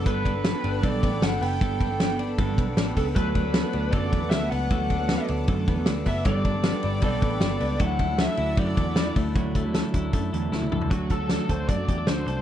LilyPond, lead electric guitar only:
\new Staff \with { instrumentName = "Lead electric guitar" } { \time 4/4 \key d \major \tempo 4 = 155 b'2 d''4 fis''8 g''8~ | g''4. r2 a'8 | b'2 d''4 e''8 fis''8~ | fis''4. r2 e''8 |
d''2 d''2 | fis''4 e''4 d''4. r8 | r1 | \key d \mixolydian fis'8 a'4 c''8 d''4 c''8 c''8 | }